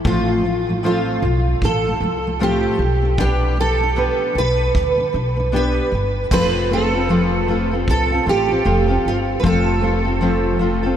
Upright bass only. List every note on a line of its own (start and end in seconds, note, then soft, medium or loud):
0.05 1.19 A1 medium
1.22 1.55 B1 medium
1.62 1.94 A1 medium
2.00 2.65 C2 medium
2.79 4.07 B1 medium
4.35 4.68 B1 medium
4.75 5.07 D2 medium
5.14 5.78 B1 medium
5.92 6.24 G1 medium
6.31 7.84 F1 medium
7.88 8.20 C2 medium
8.27 8.59 A1 medium
8.66 8.98 F1 medium
9.05 9.37 G1 medium
9.44 10.96 F1 loud